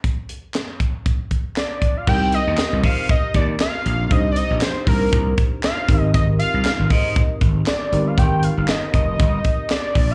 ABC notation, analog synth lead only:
X:1
M:4/4
L:1/16
Q:"Swing 16ths" 1/4=118
K:Cm
V:1 name="Analog synth lead"
z12 d3 f | g2 e4 f2 e2 d2 f4 | e3/2 d/2 e2 c2 B4 z2 f4 | e2 f4 e4 z2 d3 f |
g2 f2 e2 e6 d3 f |]